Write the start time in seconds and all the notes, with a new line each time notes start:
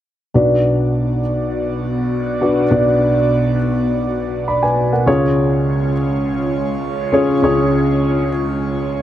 0.34 B1 B2 B3 D4 F#4 B4 D5
2.41 D4 F#4 B4 D5
2.71 B1 B2 D4 F#4 B4 D5
4.48 D5 B5
4.63 B4 G#5
4.93 A#4 F#5
5.06 C#2 C#3 G#3 C#4 F4 G#4 C#5
7.12 C#4 F4 G#4 C#5
7.42 C#2 C#3 C#4 F4 G#4 C#5